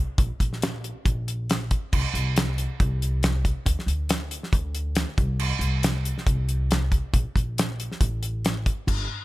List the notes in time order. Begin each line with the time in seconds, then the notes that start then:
0.18 A#1, kick, closed hi-hat
0.40 A#1, kick, closed hi-hat
0.53 snare
0.62 snare, closed hi-hat
0.84 closed hi-hat
1.05 A#1, kick, closed hi-hat
1.28 closed hi-hat
1.50 snare, closed hi-hat
1.71 kick, closed hi-hat
1.93 C2, kick, crash
2.14 C2, closed hi-hat
2.36 snare, closed hi-hat
2.58 closed hi-hat
2.80 C2, kick, closed hi-hat
3.02 closed hi-hat
3.23 snare, closed hi-hat
3.45 kick, closed hi-hat
3.66 D2, kick, closed hi-hat
3.79 snare
3.86 D2, closed hi-hat
4.09 snare, closed hi-hat
4.31 closed hi-hat
4.43 snare
4.53 D2, kick, closed hi-hat
4.75 closed hi-hat
4.95 snare, closed hi-hat
5.18 C2, kick, closed hi-hat
5.40 crash
5.59 C2, closed hi-hat
5.83 snare, closed hi-hat
6.05 closed hi-hat
6.18 snare
6.26 C2, kick, closed hi-hat
6.49 closed hi-hat
6.71 snare, closed hi-hat
6.92 kick, closed hi-hat
7.13 A#1, kick, closed hi-hat
7.36 A#1, kick, closed hi-hat
7.58 snare, closed hi-hat
7.80 closed hi-hat
7.92 snare
8.01 A1, kick, closed hi-hat
8.23 closed hi-hat
8.45 snare, closed hi-hat
8.66 kick, closed hi-hat
8.87 G1, kick, crash